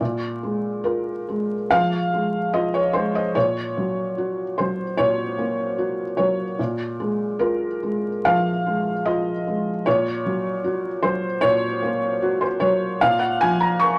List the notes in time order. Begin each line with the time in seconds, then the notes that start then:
0.01 A#2
0.43 G#3
0.84 F4 A#4
1.29 G#3
1.71 F3 F5
2.14 G#3
2.53 F4 D#5
2.74 C#5
2.93 G#3 C5
3.15 D#5
3.35 A#2 C#5
3.77 F#3
4.18 F#4
4.58 F#3 C5
4.97 A#2 C#5
5.38 A#3
5.78 F#4
6.17 F#3 C#5
6.59 A#2
7.00 G#3
7.39 F4 A#4
7.83 G#3
8.25 F3 F5
8.66 G#3
9.06 F4 D#5
9.47 G#3
9.86 A#2 C#5
10.26 F#3
10.64 F#4
11.03 F#3 C5
11.41 A#2 C#5
11.82 A#3
12.22 F#4
12.41 C5
12.60 F#3 C#5
13.01 A#2 F5
13.19 F#5
13.41 F3 G#5
13.60 A#5
13.79 A#4 C#6